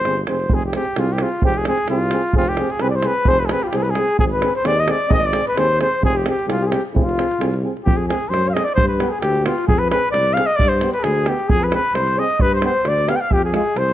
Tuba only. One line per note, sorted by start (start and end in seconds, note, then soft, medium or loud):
0.05 0.26 G1 medium
0.28 0.49 F1 medium
0.51 0.76 F1 medium
0.97 1.22 C2 medium
1.44 1.69 F1 medium
1.90 2.15 C2 medium
2.36 2.61 F1 medium
2.81 3.06 C2 medium
3.27 3.52 F1 medium
3.73 3.98 C2 medium
4.19 4.44 G#1 medium
4.65 4.90 D#2 medium
5.11 5.36 G#1 medium
5.57 5.82 D#2 medium
6.01 6.27 F1 medium
6.48 6.73 C2 medium
6.93 7.18 F1 medium
7.39 7.64 C2 medium
7.86 8.11 F2 medium
8.31 8.56 F#2 medium
8.77 9.02 G2 medium
9.23 9.47 D2 medium
9.68 9.93 F2 medium
10.14 10.39 C2 medium
10.59 10.84 G2 medium
11.04 11.29 D2 medium
11.50 11.75 F2 medium
11.94 12.19 C2 medium
12.41 12.65 G2 medium
12.85 13.10 D2 medium
13.31 13.56 F2 medium
13.76 13.93 C2 medium